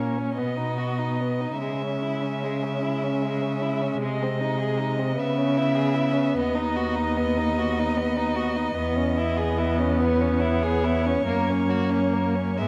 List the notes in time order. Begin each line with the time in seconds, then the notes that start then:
Already playing: A#2 A#3 C#4 C#5
0.18 C#4
0.36 B2 B3 D#5
0.56 D#4
0.78 F#4
0.98 D#4
1.20 B3
1.41 D#4
1.58 C#3 G#3 E5
1.82 C#4
2.02 E4
2.22 C#4
2.44 G#3
2.63 C#4
2.83 E4
3.04 C#4
3.22 G#3
3.42 C#4
3.62 E4
3.82 C#4
4.01 C3 G#3 D#5
4.22 C4
4.41 D#4
4.59 G#4
4.79 D#4
4.98 C4
5.16 C#3 B3 E5
5.38 C#4
5.57 E4
5.75 G#4
5.94 E4
6.13 C#4
6.35 D#2 B3 D#5
6.55 D#4
6.76 F#4
6.95 D#4
7.17 B3
7.37 D#4
7.59 F#4
7.79 D#4
7.97 B3
8.17 D#4
8.36 F#4
8.56 D#4
8.77 E2 B3
8.96 C#4
9.17 E4
9.37 G#4
9.58 E4
9.79 C#4
10.00 B3 C#5
10.21 C#4
10.40 E4
10.63 G#4
10.84 E4
11.06 C#4
11.26 F#2 A#3
11.49 C#4
11.69 F#4
11.90 C#4
12.13 A#3
12.35 C#4
12.58 G#2 G#3 B3 E5